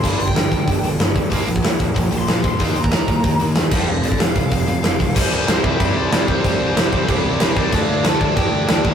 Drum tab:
CC |x---------------|----------------|--------------x-|----------------|
HH |--o-o-o-o-o-o-o-|o-o-o-o-o-o-o-o-|o-o-o-o-o-o-o---|--o-o-o-o-o-o-o-|
SD |----o-------o---|----o-------o---|----o-------o---|----o-------o---|
BD |o--o--o-o-----o-|o--o--o-o-----o-|o--o--o-o-----o-|---o--o-o-----o-|

CC |x---x---x---x---|x---x---x---x---|x---x---x---x---|
HH |----------------|----------------|----------------|
SD |----o-------o---|----o-------o---|----o-------o---|
BD |o-----o-o-----o-|o-----o-o-----o-|o-----o-o-----o-|